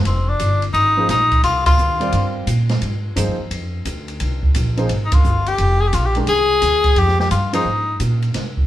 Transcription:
0.05 0.39 F1 medium
0.05 0.31 C4 medium
0.05 ride medium
0.29 0.63 D4 medium
0.39 0.73 G1 medium
0.39 hi-hat pedal medium
0.39 ride medium
0.62 ride soft
0.73 1.08 G#1 medium
0.73 1.06 D#4 medium
0.73 ride medium
0.97 1.08 F3 medium
0.97 1.08 A#3 medium
0.97 1.08 D#4 medium
0.97 1.08 G#4 medium
0.97 1.08 C5 medium
1.08 1.42 A#1 medium
1.08 1.42 D#4 medium
1.08 snare soft
1.08 hi-hat pedal medium
1.08 ride medium
1.32 kick medium
1.32 ride soft
1.43 1.77 C2 medium
1.43 1.65 F4 medium
1.43 ride medium
1.66 2.31 F4 medium
1.66 kick medium
1.66 ride medium
1.78 2.11 D#2 medium
1.78 hi-hat pedal soft
2.00 2.45 G3 medium
2.00 2.45 C4 medium
2.00 2.45 F4 medium
2.00 2.45 A#4 medium
2.00 2.45 D5 medium
2.00 ride soft
2.12 2.46 G2 medium
2.12 ride medium
2.47 2.81 A#2 medium
2.47 hi-hat pedal medium
2.47 ride medium
2.69 snare soft
2.69 ride soft
2.82 3.16 G#2 medium
2.82 ride medium
3.16 3.29 G2 medium
3.16 3.36 F3 medium
3.16 3.37 A#3 medium
3.16 3.37 D#4 medium
3.16 3.37 G#4 medium
3.16 3.37 C5 medium
3.16 hi-hat pedal medium
3.16 ride medium
3.39 3.50 D#2 medium
3.51 3.84 F2 medium
3.51 ride medium
3.85 4.19 D2 medium
3.85 hi-hat pedal medium
3.85 ride medium
4.08 ride soft
4.20 4.54 C2 medium
4.20 ride medium
4.43 kick medium
4.55 4.89 A#1 medium
4.55 hi-hat pedal medium
4.55 ride medium
4.77 4.88 F3 medium
4.77 4.88 A#3 medium
4.77 4.88 D#4 medium
4.77 4.89 G#4 medium
4.77 4.89 C5 medium
4.77 ride soft
4.89 5.23 G#1 medium
4.89 ride medium
5.05 5.15 D#4 medium
5.12 5.49 F4 medium
5.12 kick medium
5.12 ride medium
5.24 5.58 G1 medium
5.24 hi-hat pedal soft
5.46 5.82 G4 medium
5.46 ride soft
5.58 5.92 F1 medium
5.58 ride medium
5.81 5.89 G#4 medium
5.88 5.95 G4 medium
5.93 6.26 A#1 medium
5.93 6.07 F4 medium
5.93 hi-hat pedal medium
5.93 ride medium
6.05 6.16 G4 medium
6.15 6.27 D#3 medium
6.15 6.27 G#3 medium
6.15 6.27 D4 medium
6.15 6.27 G4 medium
6.15 6.27 A#4 medium
6.15 ride soft
6.27 6.61 C2 medium
6.27 7.00 G#4 loud
6.27 ride medium
6.62 6.95 D2 medium
6.62 hi-hat pedal medium
6.62 ride medium
6.84 kick medium
6.84 ride soft
6.96 7.30 F2 medium
6.96 7.20 G4 loud
6.96 ride medium
7.08 snare soft
7.20 7.30 G4 medium
7.20 snare soft
7.31 7.64 G2 medium
7.31 7.52 F4 medium
7.31 hi-hat pedal medium
7.31 ride medium
7.53 7.64 F3 medium
7.53 7.64 A#3 medium
7.53 7.65 D#4 medium
7.53 7.98 D#4 medium
7.53 7.65 G#4 medium
7.53 7.65 C5 medium
7.53 ride medium
7.65 7.99 G#2 medium
8.00 8.34 A#2 medium
8.00 hi-hat pedal medium
8.00 ride medium
8.22 ride soft
8.34 8.67 C3 medium
8.34 snare soft
8.34 ride medium
8.57 kick medium

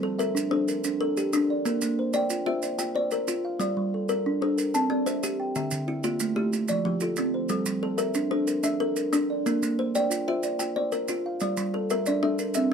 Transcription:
0.00 0.20 G3 medium
0.00 0.51 A4 medium
0.00 0.52 A4 medium
0.18 0.52 A#4 medium
0.18 0.68 E5 medium
0.18 maracas medium
0.35 0.68 D4 medium
0.35 maracas medium
0.51 0.84 D4 medium
0.51 1.00 A4 medium
0.51 1.00 C5 medium
0.68 1.17 A#4 medium
0.68 maracas medium
0.84 1.17 D4 medium
0.84 maracas medium
1.01 1.50 A4 medium
1.01 1.33 A#4 medium
1.17 1.66 G4 medium
1.17 1.65 A#4 medium
1.17 maracas soft
1.33 1.66 D4 medium
1.33 1.67 D4 medium
1.33 maracas medium
1.50 1.98 D5 medium
1.65 1.98 A#3 medium
1.65 1.98 A#4 medium
1.65 maracas medium
1.82 2.15 A#3 medium
1.82 maracas medium
1.99 2.45 C5 medium
2.13 2.46 D5 medium
2.13 2.64 G5 medium
2.13 maracas medium
2.30 2.63 F4 medium
2.30 maracas medium
2.46 2.79 F4 medium
2.46 2.93 C5 medium
2.46 2.95 E5 medium
2.62 3.10 D5 medium
2.62 maracas medium
2.79 3.11 F4 medium
2.79 3.27 G5 medium
2.79 maracas medium
2.95 3.44 C5 medium
2.95 3.28 D5 medium
3.11 3.60 A#4 medium
3.11 3.59 D5 medium
3.11 maracas soft
3.28 3.60 F4 medium
3.28 maracas medium
3.45 3.93 F5 medium
3.60 3.92 G3 medium
3.60 3.93 D5 medium
3.60 maracas soft
3.77 4.09 G3 medium
3.94 4.40 A4 medium
4.09 4.41 A#4 medium
4.09 maracas soft
4.26 4.58 D4 medium
4.41 4.58 D4 medium
4.41 4.90 A4 medium
4.41 4.74 C5 medium
4.58 4.90 A#4 medium
4.58 maracas medium
4.74 5.07 C4 medium
4.74 5.23 A5 medium
4.74 maracas medium
4.90 5.22 C4 medium
4.90 5.39 D5 medium
5.06 5.55 C5 medium
5.06 5.55 E5 medium
5.06 maracas medium
5.23 5.55 G4 medium
5.23 maracas medium
5.40 5.88 G5 medium
5.55 5.88 D3 medium
5.55 5.88 E5 medium
5.55 maracas medium
5.71 6.04 D3 medium
5.71 maracas medium
5.88 6.36 E4 medium
6.04 6.52 A#3 medium
6.04 6.36 F4 medium
6.04 maracas soft
6.20 6.53 A3 medium
6.20 maracas medium
6.36 6.52 A3 medium
6.36 6.86 E4 medium
6.36 6.69 G4 medium
6.53 6.85 F4 medium
6.53 maracas medium
6.68 7.02 F3 medium
6.68 7.18 D5 medium
6.68 maracas medium
6.85 7.18 F3 medium
6.85 7.34 G4 medium
7.00 7.50 F4 medium
7.00 7.49 A4 medium
7.00 maracas medium
7.16 7.50 C4 medium
7.16 maracas medium
7.34 7.83 C5 medium
7.49 7.82 G3 medium
7.49 7.81 A4 medium
7.49 maracas soft
7.66 7.99 G3 medium
7.66 maracas medium
7.83 8.29 A4 medium
7.83 8.32 A4 medium
7.98 8.31 A#4 medium
7.98 8.47 E5 medium
7.98 maracas medium
8.14 8.48 D4 medium
8.14 maracas medium
8.31 8.64 D4 medium
8.31 8.79 A4 medium
8.31 8.80 C5 medium
8.47 8.96 A#4 medium
8.47 maracas medium
8.63 8.96 D4 medium
8.63 9.13 E5 medium
8.63 maracas medium
8.80 9.29 A4 medium
8.80 9.13 A#4 medium
8.96 9.45 A#4 medium
8.96 maracas medium
9.13 9.45 D4 medium
9.13 9.46 D4 medium
9.13 maracas medium
9.30 9.79 D5 medium
9.46 9.78 A#3 medium
9.46 9.78 A#4 medium
9.46 maracas medium
9.63 9.95 A#3 medium
9.63 maracas medium
9.79 10.27 C5 medium
9.79 10.26 C5 medium
9.95 10.28 D5 medium
9.95 10.44 G5 medium
9.95 maracas medium
10.10 10.43 F4 medium
10.10 maracas medium
10.28 10.60 F4 medium
10.28 10.76 C5 medium
10.28 10.76 E5 medium
10.43 10.92 D5 medium
10.43 maracas medium
10.59 10.92 F4 medium
10.59 11.08 G5 medium
10.59 maracas medium
10.76 11.25 C5 medium
10.76 11.09 D5 medium
10.92 11.41 A#4 medium
10.92 11.40 D5 medium
10.92 maracas soft
11.08 11.41 F4 medium
11.08 maracas medium
11.26 11.74 F5 medium
11.40 11.74 G3 medium
11.40 11.74 D5 medium
11.40 maracas soft
11.57 11.90 G3 medium
11.57 maracas medium
11.74 12.22 A4 medium
11.74 12.23 A4 medium
11.90 12.23 A#4 medium
11.90 12.39 E5 medium
11.90 maracas medium
12.06 12.40 D4 medium
12.06 12.56 D5 medium
12.06 maracas medium
12.23 12.39 D4 medium
12.23 12.72 A4 medium
12.23 12.54 E5 medium
12.39 12.72 A#4 medium
12.39 maracas medium
12.54 12.74 C4 medium
12.54 12.74 E5 medium
12.54 maracas medium

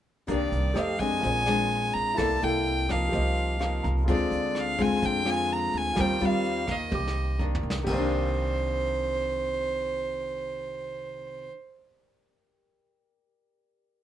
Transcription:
0.27 0.50 C2 medium
0.27 0.73 C3 medium
0.27 0.73 D#3 medium
0.27 0.74 A#3 soft
0.27 0.74 D4 medium
0.27 0.72 G4 soft
0.27 0.76 A#4 soft
0.27 0.77 D5 soft
0.27 kick medium
0.27 closed hi-hat medium
0.31 0.79 D5 medium
0.52 0.74 C2 medium
0.52 closed hi-hat soft
0.74 1.20 F2 medium
0.74 0.95 A3 medium
0.74 0.95 D#4 medium
0.74 1.22 G4 soft
0.74 0.95 G4 medium
0.74 1.23 A4 soft
0.74 1.23 C5 soft
0.74 1.24 D#5 soft
0.74 1.01 F5 medium
0.74 cross-stick soft
0.74 closed hi-hat soft
0.99 1.43 G#3 soft
0.99 1.43 C4 soft
0.99 1.44 D4 medium
0.99 1.95 G#5 medium
0.99 kick soft
0.99 closed hi-hat soft
1.20 1.91 A#1 medium
1.20 2.16 A#2 medium
1.20 2.15 F4 soft
1.20 2.16 G#4 soft
1.20 kick soft
1.20 closed hi-hat medium
1.24 2.17 C5 soft
1.24 2.18 D5 soft
1.47 2.16 G#3 soft
1.47 2.16 C4 medium
1.47 2.16 D4 medium
1.47 cross-stick medium
1.47 closed hi-hat soft
1.71 closed hi-hat soft
1.94 2.17 A#1 medium
1.94 2.19 A#5 medium
1.94 closed hi-hat soft
2.14 3.11 C3 medium
2.14 2.38 A#3 medium
2.14 3.09 E4 soft
2.14 2.38 E4 soft
2.14 3.10 A4 soft
2.14 2.45 A5 medium
2.14 kick medium
2.14 cross-stick soft
2.14 closed hi-hat soft
2.19 2.40 C2 medium
2.19 2.38 A4 medium
2.19 3.12 D5 medium
2.42 3.09 C2 medium
2.42 2.86 A#3 medium
2.42 2.86 E4 medium
2.42 2.86 A4 medium
2.42 2.93 G5 medium
2.42 closed hi-hat soft
2.65 closed hi-hat soft
2.89 3.57 F3 medium
2.89 3.57 A#3 soft
2.89 3.57 D#4 medium
2.89 3.85 F5 medium
2.89 kick soft
2.89 cross-stick medium
2.89 closed hi-hat soft
3.09 4.05 C3 soft
3.09 4.04 G4 soft
3.09 4.05 A#4 soft
3.09 4.06 C5 soft
3.09 closed hi-hat soft
3.13 3.80 C2 medium
3.13 4.07 D#5 soft
3.13 kick soft
3.37 closed hi-hat soft
3.59 4.03 F3 soft
3.59 4.04 A#3 soft
3.59 4.04 D#4 soft
3.59 3.82 F5 soft
3.59 cross-stick soft
3.59 closed hi-hat soft
3.83 4.06 C2 medium
3.83 4.06 A#5 soft
3.83 kick medium
3.83 closed hi-hat soft
4.04 5.00 D3 medium
4.04 4.75 G#3 soft
4.04 5.92 F4 soft
4.04 5.93 G#4 soft
4.04 5.94 C5 soft
4.04 kick medium
4.04 closed hi-hat soft
4.08 4.30 D2 medium
4.08 4.75 C4 medium
4.08 4.75 F4 medium
4.08 5.95 D5 soft
4.08 4.60 D5 medium
4.31 4.99 D2 medium
4.31 closed hi-hat soft
4.55 4.83 F5 medium
4.55 cross-stick medium
4.55 closed hi-hat soft
4.79 5.22 G#3 medium
4.79 5.23 C4 medium
4.79 5.23 F4 soft
4.79 5.07 G#5 medium
4.79 kick soft
4.79 closed hi-hat soft
5.02 5.70 F2 medium
5.02 5.95 D3 medium
5.02 5.32 G5 medium
5.02 kick medium
5.02 closed hi-hat medium
5.25 5.95 G#3 medium
5.25 5.95 C4 medium
5.25 5.95 F4 medium
5.25 cross-stick soft
5.25 closed hi-hat soft
5.30 5.54 G#5 medium
5.49 5.79 A#5 medium
5.49 closed hi-hat soft
5.73 5.96 D2 medium
5.73 closed hi-hat soft
5.78 6.02 G#5 medium
5.93 6.19 D#2 medium
5.93 6.66 D#3 medium
5.93 6.17 G3 medium
5.93 6.17 C4 soft
5.93 6.88 F4 soft
5.93 6.17 F4 medium
5.93 6.89 G4 soft
5.93 kick medium
5.93 cross-stick medium
5.93 closed hi-hat medium
5.98 6.91 A#4 soft
5.98 6.91 C5 soft
5.98 6.26 G5 medium
6.20 6.88 D#2 medium
6.20 6.65 G3 medium
6.20 6.65 C4 soft
6.20 6.65 F4 medium
6.20 closed hi-hat soft
6.25 6.73 F5 medium
6.44 closed hi-hat soft
6.67 7.35 D#3 soft
6.67 7.36 A#3 medium
6.67 kick soft
6.67 cross-stick medium
6.67 closed hi-hat soft
6.71 7.41 D#5 medium
6.91 7.59 C2 medium
6.91 7.81 C3 soft
6.91 7.83 G4 soft
6.91 7.86 A#4 soft
6.91 7.87 D6 soft
6.91 kick soft
6.91 high tom soft
7.08 snare soft
7.39 7.83 D#3 soft
7.39 7.84 A#3 soft
7.39 7.84 D4 medium
7.39 kick soft
7.55 floor tom medium
7.63 7.85 C2 medium
7.70 snare soft
7.83 11.47 C3 medium
7.83 11.44 G4 medium
7.83 crash medium
7.87 11.47 C2 medium
7.87 11.53 D#3 medium
7.87 11.49 A#4 medium
7.87 11.50 C5 medium
7.87 kick medium
7.92 11.57 A#3 medium
7.92 11.52 D5 medium
7.98 11.62 D4 medium

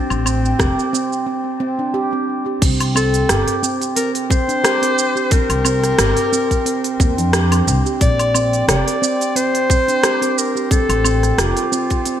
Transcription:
0.00 1.27 C4 loud
0.10 0.52 A1 medium
0.10 low woodblock medium
0.10 shaker soft
0.26 0.58 C4 medium
0.26 low woodblock medium
0.26 shaker medium
0.45 shaker soft
0.59 0.72 F1 medium
0.59 0.77 G4 loud
0.59 kick loud
0.59 cross-stick medium
0.59 shaker soft
0.79 shaker soft
0.93 1.25 C4 medium
0.93 shaker medium
1.13 shaker soft
1.26 1.59 C4 medium
1.60 1.77 C4 loud
1.79 1.93 D4 medium
1.94 2.12 G4 loud
2.13 2.21 C4 medium
2.46 2.61 G4 medium
2.62 3.22 C2 medium
2.62 2.79 C4 medium
2.62 kick loud
2.62 open hi-hat medium
2.62 crash medium
2.62 shaker soft
2.80 open hi-hat soft
2.80 low woodblock medium
2.80 shaker soft
2.95 3.28 C4 loud
2.95 3.59 A4 loud
2.95 low woodblock medium
2.95 shaker medium
3.14 open hi-hat soft
3.14 shaker soft
3.29 3.42 G1 medium
3.29 3.47 G4 loud
3.29 cross-stick loud
3.29 open hi-hat medium
3.29 shaker soft
3.48 open hi-hat soft
3.48 shaker soft
3.63 3.95 C4 loud
3.63 shaker medium
3.81 open hi-hat soft
3.81 shaker soft
3.96 4.29 C4 medium
3.96 4.12 A#4 loud
3.96 open hi-hat medium
3.96 shaker soft
4.15 open hi-hat soft
4.15 shaker soft
4.30 4.47 C4 loud
4.30 5.33 C5 loud
4.30 kick loud
4.30 shaker medium
4.48 4.62 D4 medium
4.48 open hi-hat soft
4.48 shaker soft
4.64 4.81 G4 loud
4.64 cross-stick loud
4.64 open hi-hat medium
4.64 shaker soft
4.82 4.91 C4 medium
4.82 open hi-hat soft
4.82 shaker soft
4.99 shaker medium
5.16 5.31 G4 medium
5.16 shaker soft
5.31 5.49 C4 medium
5.31 7.34 A#4 loud
5.31 kick loud
5.31 open hi-hat medium
5.31 shaker soft
5.50 5.91 C2 medium
5.50 open hi-hat soft
5.50 low woodblock medium
5.50 shaker soft
5.65 5.97 C4 loud
5.65 low woodblock medium
5.65 shaker medium
5.83 cross-stick soft
5.83 open hi-hat soft
5.83 shaker soft
5.99 6.12 G1 medium
5.99 6.16 G4 loud
5.99 cross-stick loud
5.99 open hi-hat medium
5.99 shaker soft
6.17 open hi-hat soft
6.17 shaker soft
6.32 6.64 C4 loud
6.32 shaker medium
6.51 kick medium
6.51 open hi-hat soft
6.51 shaker soft
6.65 6.98 C4 medium
6.65 open hi-hat medium
6.65 shaker soft
6.84 open hi-hat soft
6.84 shaker soft
7.00 7.18 D#2 loud
7.00 7.16 C4 loud
7.00 kick loud
7.00 shaker medium
7.18 7.60 F2 medium
7.18 7.32 D4 medium
7.18 open hi-hat soft
7.18 shaker soft
7.33 7.51 G4 loud
7.33 cross-stick loud
7.33 open hi-hat medium
7.33 shaker soft
7.51 7.61 C4 medium
7.51 open hi-hat soft
7.51 low woodblock medium
7.51 shaker soft
7.67 7.80 C2 loud
7.67 shaker medium
7.86 8.00 G4 medium
7.86 shaker soft
8.01 8.61 A#1 loud
8.01 8.18 C4 medium
8.01 8.65 D5 loud
8.01 kick loud
8.01 open hi-hat medium
8.01 shaker soft
8.19 open hi-hat soft
8.19 low woodblock medium
8.19 shaker soft
8.34 8.67 C4 loud
8.34 low woodblock medium
8.34 shaker medium
8.53 open hi-hat soft
8.53 shaker soft
8.68 8.81 F1 medium
8.68 8.86 G4 loud
8.68 9.37 D5 loud
8.68 cross-stick loud
8.68 open hi-hat medium
8.68 shaker soft
8.88 open hi-hat soft
8.88 shaker soft
9.02 9.34 C4 loud
9.02 shaker medium
9.21 open hi-hat soft
9.21 shaker soft
9.36 9.68 C4 medium
9.36 10.40 C5 loud
9.36 open hi-hat medium
9.36 shaker soft
9.55 open hi-hat soft
9.55 shaker soft
9.70 9.86 C4 loud
9.70 kick loud
9.70 shaker medium
9.88 10.02 D4 medium
9.88 open hi-hat soft
9.88 shaker soft
10.03 10.21 G4 loud
10.03 cross-stick loud
10.03 open hi-hat medium
10.03 shaker soft
10.22 10.31 C4 medium
10.22 open hi-hat soft
10.22 shaker soft
10.38 10.71 A#4 medium
10.38 shaker medium
10.56 10.70 G4 medium
10.56 shaker soft
10.71 10.88 C4 medium
10.71 11.41 A4 loud
10.71 kick loud
10.71 open hi-hat medium
10.71 shaker soft
10.89 11.31 A1 medium
10.89 open hi-hat soft
10.89 low woodblock medium
10.89 shaker soft
11.04 11.37 C4 loud
11.04 low woodblock medium
11.04 shaker medium
11.23 cross-stick soft
11.23 open hi-hat soft
11.23 shaker soft
11.38 11.51 F1 medium
11.38 12.20 F4 medium
11.38 11.56 G4 loud
11.38 cross-stick loud
11.38 open hi-hat medium
11.38 shaker soft
11.57 open hi-hat soft
11.57 shaker soft
11.72 12.04 C4 loud
11.72 shaker medium
11.90 kick medium
11.90 open hi-hat soft
11.90 shaker soft
12.05 12.20 C4 medium
12.05 open hi-hat medium
12.05 shaker soft

